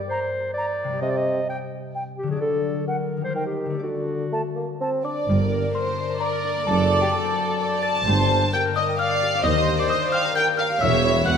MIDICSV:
0, 0, Header, 1, 12, 480
1, 0, Start_track
1, 0, Key_signature, -2, "minor"
1, 0, Tempo, 461894
1, 1064, Time_signature, 3, 2, 24, 8
1, 2989, Tempo, 479233
1, 5869, Tempo, 459770
1, 11740, End_track
2, 0, Start_track
2, 0, Title_t, "Celesta"
2, 0, Program_c, 0, 8
2, 5163, Note_on_c, 0, 86, 60
2, 5829, Note_off_c, 0, 86, 0
2, 5866, Note_on_c, 0, 84, 63
2, 6316, Note_off_c, 0, 84, 0
2, 6340, Note_on_c, 0, 82, 76
2, 6790, Note_off_c, 0, 82, 0
2, 6826, Note_on_c, 0, 81, 78
2, 7163, Note_off_c, 0, 81, 0
2, 7190, Note_on_c, 0, 79, 67
2, 7302, Note_off_c, 0, 79, 0
2, 7304, Note_on_c, 0, 81, 75
2, 8002, Note_off_c, 0, 81, 0
2, 8035, Note_on_c, 0, 93, 93
2, 8727, Note_off_c, 0, 93, 0
2, 8774, Note_on_c, 0, 91, 85
2, 8997, Note_off_c, 0, 91, 0
2, 9009, Note_on_c, 0, 87, 92
2, 9233, Note_off_c, 0, 87, 0
2, 9250, Note_on_c, 0, 89, 104
2, 9695, Note_off_c, 0, 89, 0
2, 9718, Note_on_c, 0, 87, 84
2, 10053, Note_off_c, 0, 87, 0
2, 10090, Note_on_c, 0, 86, 78
2, 10197, Note_off_c, 0, 86, 0
2, 10198, Note_on_c, 0, 87, 92
2, 10421, Note_off_c, 0, 87, 0
2, 10431, Note_on_c, 0, 89, 100
2, 10657, Note_off_c, 0, 89, 0
2, 10675, Note_on_c, 0, 91, 113
2, 10897, Note_off_c, 0, 91, 0
2, 10902, Note_on_c, 0, 89, 94
2, 11129, Note_off_c, 0, 89, 0
2, 11149, Note_on_c, 0, 88, 99
2, 11596, Note_off_c, 0, 88, 0
2, 11616, Note_on_c, 0, 90, 94
2, 11740, Note_off_c, 0, 90, 0
2, 11740, End_track
3, 0, Start_track
3, 0, Title_t, "Flute"
3, 0, Program_c, 1, 73
3, 113, Note_on_c, 1, 82, 46
3, 198, Note_off_c, 1, 82, 0
3, 600, Note_on_c, 1, 82, 53
3, 685, Note_off_c, 1, 82, 0
3, 1549, Note_on_c, 1, 79, 49
3, 1634, Note_off_c, 1, 79, 0
3, 2027, Note_on_c, 1, 79, 43
3, 2113, Note_off_c, 1, 79, 0
3, 2992, Note_on_c, 1, 78, 41
3, 3077, Note_off_c, 1, 78, 0
3, 3471, Note_on_c, 1, 79, 37
3, 3556, Note_off_c, 1, 79, 0
3, 4444, Note_on_c, 1, 81, 37
3, 4531, Note_off_c, 1, 81, 0
3, 4930, Note_on_c, 1, 81, 40
3, 5015, Note_off_c, 1, 81, 0
3, 11740, End_track
4, 0, Start_track
4, 0, Title_t, "Violin section"
4, 0, Program_c, 2, 48
4, 5177, Note_on_c, 2, 74, 53
4, 5836, Note_off_c, 2, 74, 0
4, 5876, Note_on_c, 2, 72, 64
4, 6346, Note_off_c, 2, 72, 0
4, 6365, Note_on_c, 2, 70, 69
4, 6837, Note_off_c, 2, 70, 0
4, 6843, Note_on_c, 2, 69, 65
4, 7189, Note_off_c, 2, 69, 0
4, 7196, Note_on_c, 2, 67, 59
4, 7312, Note_on_c, 2, 69, 67
4, 7313, Note_off_c, 2, 67, 0
4, 8048, Note_off_c, 2, 69, 0
4, 8048, Note_on_c, 2, 81, 89
4, 8761, Note_off_c, 2, 81, 0
4, 8777, Note_on_c, 2, 79, 55
4, 8861, Note_off_c, 2, 79, 0
4, 9017, Note_on_c, 2, 75, 69
4, 9101, Note_off_c, 2, 75, 0
4, 9262, Note_on_c, 2, 77, 82
4, 9724, Note_off_c, 2, 77, 0
4, 9725, Note_on_c, 2, 75, 84
4, 10081, Note_on_c, 2, 74, 80
4, 10082, Note_off_c, 2, 75, 0
4, 10198, Note_on_c, 2, 75, 76
4, 10201, Note_off_c, 2, 74, 0
4, 10435, Note_on_c, 2, 77, 70
4, 10438, Note_off_c, 2, 75, 0
4, 10670, Note_off_c, 2, 77, 0
4, 10694, Note_on_c, 2, 79, 92
4, 10777, Note_off_c, 2, 79, 0
4, 10922, Note_on_c, 2, 77, 82
4, 11005, Note_off_c, 2, 77, 0
4, 11154, Note_on_c, 2, 76, 90
4, 11622, Note_off_c, 2, 76, 0
4, 11632, Note_on_c, 2, 78, 79
4, 11740, Note_off_c, 2, 78, 0
4, 11740, End_track
5, 0, Start_track
5, 0, Title_t, "Violin section"
5, 0, Program_c, 3, 48
5, 5163, Note_on_c, 3, 74, 50
5, 5829, Note_off_c, 3, 74, 0
5, 5873, Note_on_c, 3, 72, 62
5, 6344, Note_off_c, 3, 72, 0
5, 6350, Note_on_c, 3, 70, 59
5, 6820, Note_off_c, 3, 70, 0
5, 6826, Note_on_c, 3, 69, 68
5, 7181, Note_off_c, 3, 69, 0
5, 7189, Note_on_c, 3, 67, 59
5, 7237, Note_off_c, 3, 67, 0
5, 7310, Note_on_c, 3, 69, 59
5, 8032, Note_off_c, 3, 69, 0
5, 8045, Note_on_c, 3, 81, 77
5, 8759, Note_off_c, 3, 81, 0
5, 8774, Note_on_c, 3, 79, 60
5, 8857, Note_off_c, 3, 79, 0
5, 9011, Note_on_c, 3, 75, 68
5, 9247, Note_off_c, 3, 75, 0
5, 9250, Note_on_c, 3, 77, 81
5, 9718, Note_off_c, 3, 77, 0
5, 9736, Note_on_c, 3, 75, 81
5, 10080, Note_off_c, 3, 75, 0
5, 10084, Note_on_c, 3, 74, 73
5, 10200, Note_off_c, 3, 74, 0
5, 10214, Note_on_c, 3, 75, 74
5, 10298, Note_off_c, 3, 75, 0
5, 10453, Note_on_c, 3, 77, 85
5, 10680, Note_off_c, 3, 77, 0
5, 10686, Note_on_c, 3, 79, 83
5, 10769, Note_off_c, 3, 79, 0
5, 10921, Note_on_c, 3, 77, 82
5, 11151, Note_off_c, 3, 77, 0
5, 11159, Note_on_c, 3, 76, 84
5, 11631, Note_on_c, 3, 78, 79
5, 11634, Note_off_c, 3, 76, 0
5, 11740, Note_off_c, 3, 78, 0
5, 11740, End_track
6, 0, Start_track
6, 0, Title_t, "Viola section"
6, 0, Program_c, 4, 48
6, 5410, Note_on_c, 4, 70, 67
6, 6315, Note_off_c, 4, 70, 0
6, 6354, Note_on_c, 4, 74, 80
6, 7789, Note_off_c, 4, 74, 0
6, 7801, Note_on_c, 4, 74, 68
6, 8285, Note_off_c, 4, 74, 0
6, 8311, Note_on_c, 4, 72, 76
6, 8775, Note_off_c, 4, 72, 0
6, 8788, Note_on_c, 4, 70, 66
6, 9250, Note_off_c, 4, 70, 0
6, 9262, Note_on_c, 4, 74, 77
6, 9725, Note_off_c, 4, 74, 0
6, 9726, Note_on_c, 4, 72, 85
6, 10676, Note_off_c, 4, 72, 0
6, 10682, Note_on_c, 4, 70, 80
6, 11146, Note_off_c, 4, 70, 0
6, 11153, Note_on_c, 4, 73, 87
6, 11621, Note_off_c, 4, 73, 0
6, 11637, Note_on_c, 4, 71, 70
6, 11740, Note_off_c, 4, 71, 0
6, 11740, End_track
7, 0, Start_track
7, 0, Title_t, "Clarinet"
7, 0, Program_c, 5, 71
7, 90, Note_on_c, 5, 72, 65
7, 553, Note_off_c, 5, 72, 0
7, 559, Note_on_c, 5, 74, 71
7, 1041, Note_off_c, 5, 74, 0
7, 1063, Note_on_c, 5, 75, 72
7, 1140, Note_on_c, 5, 74, 68
7, 1156, Note_off_c, 5, 75, 0
7, 1212, Note_on_c, 5, 75, 80
7, 1227, Note_off_c, 5, 74, 0
7, 1541, Note_off_c, 5, 75, 0
7, 1554, Note_on_c, 5, 79, 53
7, 1658, Note_off_c, 5, 79, 0
7, 2264, Note_on_c, 5, 67, 60
7, 2375, Note_off_c, 5, 67, 0
7, 2399, Note_on_c, 5, 68, 57
7, 2496, Note_off_c, 5, 68, 0
7, 2502, Note_on_c, 5, 69, 74
7, 2977, Note_off_c, 5, 69, 0
7, 2983, Note_on_c, 5, 70, 51
7, 3334, Note_off_c, 5, 70, 0
7, 3353, Note_on_c, 5, 72, 70
7, 3453, Note_off_c, 5, 72, 0
7, 3459, Note_on_c, 5, 70, 62
7, 3570, Note_off_c, 5, 70, 0
7, 3576, Note_on_c, 5, 67, 51
7, 3935, Note_off_c, 5, 67, 0
7, 3946, Note_on_c, 5, 66, 60
7, 4904, Note_off_c, 5, 66, 0
7, 11740, End_track
8, 0, Start_track
8, 0, Title_t, "Harp"
8, 0, Program_c, 6, 46
8, 0, Note_on_c, 6, 43, 48
8, 0, Note_on_c, 6, 55, 40
8, 0, Note_on_c, 6, 67, 41
8, 0, Note_on_c, 6, 70, 39
8, 872, Note_on_c, 6, 48, 50
8, 907, Note_off_c, 6, 55, 0
8, 919, Note_on_c, 6, 55, 39
8, 954, Note_off_c, 6, 67, 0
8, 966, Note_on_c, 6, 67, 39
8, 991, Note_off_c, 6, 43, 0
8, 1013, Note_on_c, 6, 75, 42
8, 1061, Note_off_c, 6, 70, 0
8, 2318, Note_on_c, 6, 50, 48
8, 2363, Note_on_c, 6, 54, 35
8, 2411, Note_on_c, 6, 62, 39
8, 2426, Note_off_c, 6, 48, 0
8, 2450, Note_off_c, 6, 55, 0
8, 2455, Note_on_c, 6, 74, 35
8, 2474, Note_off_c, 6, 67, 0
8, 2497, Note_off_c, 6, 75, 0
8, 3283, Note_on_c, 6, 51, 38
8, 3326, Note_on_c, 6, 55, 33
8, 3373, Note_on_c, 6, 67, 31
8, 3393, Note_off_c, 6, 50, 0
8, 3415, Note_off_c, 6, 54, 0
8, 3415, Note_on_c, 6, 70, 34
8, 3438, Note_off_c, 6, 62, 0
8, 3459, Note_off_c, 6, 74, 0
8, 3770, Note_on_c, 6, 50, 38
8, 3814, Note_on_c, 6, 57, 30
8, 3859, Note_on_c, 6, 62, 31
8, 3875, Note_off_c, 6, 51, 0
8, 3897, Note_off_c, 6, 55, 0
8, 3907, Note_on_c, 6, 74, 30
8, 3921, Note_off_c, 6, 67, 0
8, 3942, Note_off_c, 6, 70, 0
8, 5331, Note_off_c, 6, 50, 0
8, 5353, Note_off_c, 6, 57, 0
8, 5409, Note_on_c, 6, 43, 53
8, 5527, Note_on_c, 6, 50, 39
8, 5638, Note_on_c, 6, 58, 42
8, 5743, Note_off_c, 6, 62, 0
8, 5755, Note_on_c, 6, 62, 49
8, 5867, Note_on_c, 6, 70, 48
8, 5975, Note_off_c, 6, 62, 0
8, 5988, Note_on_c, 6, 62, 51
8, 6096, Note_off_c, 6, 74, 0
8, 6108, Note_on_c, 6, 74, 47
8, 6230, Note_on_c, 6, 82, 51
8, 6329, Note_off_c, 6, 74, 0
8, 6342, Note_on_c, 6, 74, 54
8, 6454, Note_off_c, 6, 70, 0
8, 6466, Note_on_c, 6, 70, 47
8, 6578, Note_off_c, 6, 62, 0
8, 6591, Note_on_c, 6, 62, 48
8, 6699, Note_off_c, 6, 58, 0
8, 6712, Note_on_c, 6, 58, 46
8, 6828, Note_on_c, 6, 42, 61
8, 6847, Note_off_c, 6, 70, 0
8, 6848, Note_off_c, 6, 82, 0
8, 6850, Note_off_c, 6, 58, 0
8, 6854, Note_off_c, 6, 43, 0
8, 6854, Note_off_c, 6, 50, 0
8, 6948, Note_on_c, 6, 54, 44
8, 7068, Note_on_c, 6, 60, 48
8, 7170, Note_off_c, 6, 62, 0
8, 7182, Note_on_c, 6, 62, 44
8, 7308, Note_on_c, 6, 69, 55
8, 7423, Note_on_c, 6, 72, 54
8, 7535, Note_off_c, 6, 74, 0
8, 7548, Note_on_c, 6, 74, 49
8, 7672, Note_on_c, 6, 81, 52
8, 7779, Note_off_c, 6, 74, 0
8, 7792, Note_on_c, 6, 74, 59
8, 7910, Note_off_c, 6, 72, 0
8, 7922, Note_on_c, 6, 72, 52
8, 8031, Note_off_c, 6, 69, 0
8, 8044, Note_on_c, 6, 69, 49
8, 8158, Note_off_c, 6, 62, 0
8, 8171, Note_on_c, 6, 62, 52
8, 8294, Note_on_c, 6, 43, 69
8, 8311, Note_off_c, 6, 42, 0
8, 8311, Note_off_c, 6, 54, 0
8, 8311, Note_off_c, 6, 60, 0
8, 8311, Note_off_c, 6, 69, 0
8, 8312, Note_off_c, 6, 72, 0
8, 8312, Note_off_c, 6, 81, 0
8, 8420, Note_on_c, 6, 50, 46
8, 8543, Note_on_c, 6, 58, 51
8, 8647, Note_off_c, 6, 62, 0
8, 8660, Note_on_c, 6, 62, 58
8, 8781, Note_on_c, 6, 67, 58
8, 8897, Note_on_c, 6, 70, 59
8, 9008, Note_off_c, 6, 74, 0
8, 9021, Note_on_c, 6, 74, 58
8, 9138, Note_on_c, 6, 79, 57
8, 9250, Note_off_c, 6, 74, 0
8, 9262, Note_on_c, 6, 74, 60
8, 9365, Note_off_c, 6, 70, 0
8, 9377, Note_on_c, 6, 70, 56
8, 9487, Note_off_c, 6, 67, 0
8, 9500, Note_on_c, 6, 67, 54
8, 9608, Note_off_c, 6, 62, 0
8, 9621, Note_on_c, 6, 62, 58
8, 9738, Note_on_c, 6, 51, 70
8, 9749, Note_off_c, 6, 43, 0
8, 9751, Note_off_c, 6, 50, 0
8, 9841, Note_off_c, 6, 58, 0
8, 9853, Note_on_c, 6, 58, 51
8, 9955, Note_off_c, 6, 62, 0
8, 9968, Note_on_c, 6, 62, 50
8, 10074, Note_off_c, 6, 67, 0
8, 10087, Note_on_c, 6, 67, 54
8, 10186, Note_off_c, 6, 70, 0
8, 10198, Note_on_c, 6, 70, 62
8, 10307, Note_off_c, 6, 74, 0
8, 10319, Note_on_c, 6, 74, 66
8, 10424, Note_off_c, 6, 79, 0
8, 10436, Note_on_c, 6, 79, 66
8, 10561, Note_on_c, 6, 82, 62
8, 10666, Note_off_c, 6, 79, 0
8, 10679, Note_on_c, 6, 79, 60
8, 10785, Note_off_c, 6, 74, 0
8, 10797, Note_on_c, 6, 74, 59
8, 10904, Note_off_c, 6, 70, 0
8, 10917, Note_on_c, 6, 70, 55
8, 11019, Note_off_c, 6, 67, 0
8, 11032, Note_on_c, 6, 67, 59
8, 11159, Note_on_c, 6, 52, 69
8, 11173, Note_off_c, 6, 62, 0
8, 11173, Note_off_c, 6, 70, 0
8, 11173, Note_off_c, 6, 74, 0
8, 11173, Note_off_c, 6, 82, 0
8, 11175, Note_off_c, 6, 58, 0
8, 11177, Note_off_c, 6, 51, 0
8, 11276, Note_on_c, 6, 55, 53
8, 11395, Note_on_c, 6, 64, 58
8, 11516, Note_on_c, 6, 71, 55
8, 11620, Note_off_c, 6, 67, 0
8, 11633, Note_on_c, 6, 67, 63
8, 11740, Note_off_c, 6, 52, 0
8, 11740, Note_off_c, 6, 55, 0
8, 11740, Note_off_c, 6, 64, 0
8, 11740, Note_off_c, 6, 67, 0
8, 11740, Note_off_c, 6, 71, 0
8, 11740, Note_off_c, 6, 79, 0
8, 11740, End_track
9, 0, Start_track
9, 0, Title_t, "Bassoon"
9, 0, Program_c, 7, 70
9, 1057, Note_on_c, 7, 48, 70
9, 1456, Note_off_c, 7, 48, 0
9, 2503, Note_on_c, 7, 50, 61
9, 2907, Note_off_c, 7, 50, 0
9, 3461, Note_on_c, 7, 51, 51
9, 3863, Note_off_c, 7, 51, 0
9, 3947, Note_on_c, 7, 50, 48
9, 4356, Note_off_c, 7, 50, 0
9, 4432, Note_on_c, 7, 57, 47
9, 4543, Note_off_c, 7, 57, 0
9, 4669, Note_on_c, 7, 58, 40
9, 4781, Note_off_c, 7, 58, 0
9, 4921, Note_on_c, 7, 60, 54
9, 5157, Note_on_c, 7, 62, 47
9, 5172, Note_off_c, 7, 60, 0
9, 5397, Note_off_c, 7, 62, 0
9, 11740, End_track
10, 0, Start_track
10, 0, Title_t, "Cello section"
10, 0, Program_c, 8, 48
10, 5402, Note_on_c, 8, 43, 71
10, 5772, Note_off_c, 8, 43, 0
10, 6835, Note_on_c, 8, 42, 75
10, 7212, Note_off_c, 8, 42, 0
10, 8295, Note_on_c, 8, 43, 89
10, 8676, Note_off_c, 8, 43, 0
10, 9731, Note_on_c, 8, 39, 85
10, 10104, Note_off_c, 8, 39, 0
10, 11155, Note_on_c, 8, 40, 90
10, 11576, Note_off_c, 8, 40, 0
10, 11635, Note_on_c, 8, 40, 66
10, 11740, Note_off_c, 8, 40, 0
10, 11740, End_track
11, 0, Start_track
11, 0, Title_t, "Double bass section"
11, 0, Program_c, 10, 48
11, 5398, Note_on_c, 10, 31, 61
11, 5770, Note_off_c, 10, 31, 0
11, 6832, Note_on_c, 10, 30, 70
11, 7210, Note_off_c, 10, 30, 0
11, 8289, Note_on_c, 10, 31, 73
11, 8672, Note_off_c, 10, 31, 0
11, 9731, Note_on_c, 10, 39, 74
11, 10104, Note_off_c, 10, 39, 0
11, 11147, Note_on_c, 10, 28, 77
11, 11572, Note_off_c, 10, 28, 0
11, 11626, Note_on_c, 10, 28, 68
11, 11740, Note_off_c, 10, 28, 0
11, 11740, End_track
12, 0, Start_track
12, 0, Title_t, "Tuba"
12, 0, Program_c, 11, 58
12, 5406, Note_on_c, 11, 31, 69
12, 5774, Note_off_c, 11, 31, 0
12, 6824, Note_on_c, 11, 30, 69
12, 7206, Note_off_c, 11, 30, 0
12, 8292, Note_on_c, 11, 31, 81
12, 8674, Note_off_c, 11, 31, 0
12, 9728, Note_on_c, 11, 39, 77
12, 10102, Note_off_c, 11, 39, 0
12, 11156, Note_on_c, 11, 28, 79
12, 11576, Note_off_c, 11, 28, 0
12, 11631, Note_on_c, 11, 28, 72
12, 11740, Note_off_c, 11, 28, 0
12, 11740, End_track
0, 0, End_of_file